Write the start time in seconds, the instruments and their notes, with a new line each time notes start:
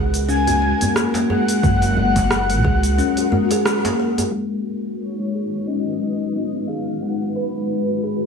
Already playing: upright bass C#2, ambient pad G#3 F#4 A#4 F#5, kalimba G#4
0.14 open hi-hat, shaker
0.28 kalimba C#4, soft synth lead G#5, shaker
0.47 kalimba F#4, open hi-hat, djembe tone, shaker
0.62 kalimba G#3
0.81 open hi-hat, djembe tone, djembe bass, shaker
0.96 kalimba A#3, cross-stick, shaker
1.14 kalimba A#3, open hi-hat, djembe slap, shaker
1.30 kalimba G#4, soft synth lead F#5, djembe tone
1.48 open hi-hat, shaker
1.63 upright bass F#1, kalimba G#3, kick, shaker
1.82 open hi-hat, djembe slap, shaker
1.97 djembe bass
2.16 kick, open hi-hat, djembe slap, djembe tone, shaker
2.31 cross-stick, shaker
2.50 kalimba G#3, open hi-hat, shaker
2.65 upright bass C#2, kalimba G#4, kick
2.83 open hi-hat, shaker
2.98 kalimba C#4, shaker
3.17 kalimba F#4, open hi-hat, shaker
3.32 kalimba G#3, djembe bass
3.51 kalimba G#4, open hi-hat, shaker
3.66 cross-stick, shaker
3.85 kalimba A#3, open hi-hat, djembe slap, shaker
4.00 kalimba A#3
4.18 kalimba G#4, open hi-hat, djembe tone, shaker
4.32 ambient pad G#3 D#4 F#4 B4, kalimba G#3, shaker
4.53 shaker
4.86 shaker
5.01 soft synth lead C#5, shaker
5.20 kalimba G#3, shaker
5.35 kalimba G#4
5.54 shaker
5.66 kalimba C#4, soft synth lead D#5, shaker
5.87 kalimba F#4, shaker
6.02 kalimba G#3
6.21 shaker
6.35 kalimba B3, shaker
6.54 kalimba B3, shaker
6.67 kalimba G#4, soft synth lead F5
6.89 shaker
7.02 kalimba G#3, soft synth lead F#5, shaker
7.23 shaker
7.36 soft synth lead B4
7.56 shaker
7.70 soft synth lead B4, shaker
7.89 kalimba G#3, shaker
8.04 kalimba G#4